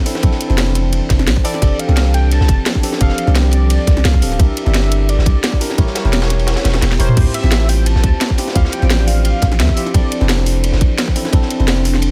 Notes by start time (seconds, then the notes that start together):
Already playing: E3 C4 D4 E4 A4 C5
0.05 C4 D4 E4 A4, snare, open hi-hat, ride
0.15 snare
0.22 A#1 C4 D4 E4 A4, kick, closed hi-hat, ride
0.31 snare
0.41 closed hi-hat, ride
0.48 F1 C4 D4 E4 C5, snare
0.58 snare, closed hi-hat, ride
0.75 snare, closed hi-hat, ride
0.93 closed hi-hat, ride
1.09 F1, kick, snare, closed hi-hat, ride
1.19 snare
1.27 A#1, snare, closed hi-hat
1.36 kick
1.44 C4 D4 E4 A4 D5, open hi-hat, ride
1.54 snare
1.61 F1 F3 C4 D4 G4 A4, kick, closed hi-hat, ride
1.79 F5, closed hi-hat, ride
1.87 C2 C4 D4 G4 D5, snare
1.97 snare, closed hi-hat, ride
2.14 G5, closed hi-hat, ride
2.31 A5, closed hi-hat, ride
2.41 C2, snare
2.48 F1, kick, closed hi-hat, ride
2.66 snare, closed hi-hat, ride
2.75 kick
2.83 C4 D4 G4 A4, snare, open hi-hat, ride
2.92 snare
3.00 F1 C4 D4 G4 A4 F5, kick, closed hi-hat, ride
3.09 snare
3.18 closed hi-hat, ride
3.26 C2 C4 D4 G4 D5, snare
3.35 snare, closed hi-hat, ride
3.51 D5, snare, closed hi-hat, ride
3.70 closed hi-hat, ride
3.87 C2, kick, snare, closed hi-hat, ride
3.97 snare
4.05 C2 F5, snare, closed hi-hat, ride
4.14 kick
4.21 D1 C4 D4 G4 A4, open hi-hat, ride
4.32 snare
4.39 C2 G3 C4 D4 E4 G4 A#4 E5, kick, closed hi-hat, ride
4.57 closed hi-hat, ride
4.65 G1 D4 E4 G4 D5, snare
4.74 snare, closed hi-hat, ride
4.91 closed hi-hat, ride
5.09 D5, closed hi-hat, ride
5.18 G1, snare
5.26 C2, kick, closed hi-hat, ride
5.44 snare, closed hi-hat, ride
5.53 kick
5.60 D4 E4 G4 A#4, snare, open hi-hat, ride
5.70 snare
5.78 A1 A#3 C#4 E4 G4 A#4 C#5 A5, kick, closed hi-hat, ride
5.87 snare
5.95 snare, closed hi-hat, ride
6.04 E1 E4 G4 A#4 G5, snare
6.12 snare, closed hi-hat, ride
6.22 snare, ride
6.30 snare, closed hi-hat
6.39 ride
6.47 snare, closed hi-hat, ride
6.56 snare, ride
6.64 E1, snare, closed hi-hat, ride
6.73 snare, ride
6.82 E1, snare, closed hi-hat, ride
6.92 snare
6.99 E1 E4 G4 A#4 C5 C#5, open hi-hat, ride
7.09 mid tom
7.16 D2 F3 C4 E4 F4 G4 D5, kick, closed hi-hat, crash, ride
7.34 E5, closed hi-hat, ride
7.42 A1 C4 E4 F4 C5, snare
7.52 snare, closed hi-hat, ride
7.69 G5, open hi-hat, ride
7.86 A5, closed hi-hat, ride
7.95 A1, snare
8.03 D2, kick, closed hi-hat, ride
8.21 snare, closed hi-hat, ride
8.30 kick
8.38 C4 E4 F4 G4, snare, open hi-hat, ride
8.48 snare
8.55 D2 C4 E4 F4 G4 F5, kick, closed hi-hat, ride
8.65 snare
8.72 G5, closed hi-hat, ride
8.81 A1 C4 D4 F4 C5, snare
8.90 snare, closed hi-hat, ride
9.07 F5, snare, open hi-hat, ride
9.25 F5, closed hi-hat, ride
9.42 A1, kick, snare, closed hi-hat, ride
9.52 snare
9.59 D2 E5, snare, closed hi-hat, ride
9.69 kick
9.76 C4 E4 F4 G4, open hi-hat, ride
9.86 snare
9.94 A#1 E3 C4 D4 E4 A4 D5, kick, closed hi-hat, ride
10.12 closed hi-hat, ride
10.20 F1 C4 D4 E4 C5, snare
10.29 snare, closed hi-hat, ride
10.46 open hi-hat, ride
10.64 closed hi-hat, ride
10.72 F1, snare
10.81 A#1, kick, closed hi-hat, ride
10.98 snare, closed hi-hat, ride
11.08 kick
11.15 C4 D4 E4 A4, snare, open hi-hat, ride
11.25 snare
11.32 A#1 C4 D4 E4 A4, kick, closed hi-hat, ride
11.42 snare
11.51 closed hi-hat, ride
11.58 F1 C4 D4 E4 C5, snare
11.68 snare, closed hi-hat, ride
11.85 snare, open hi-hat, ride
11.94 snare
12.02 closed hi-hat, ride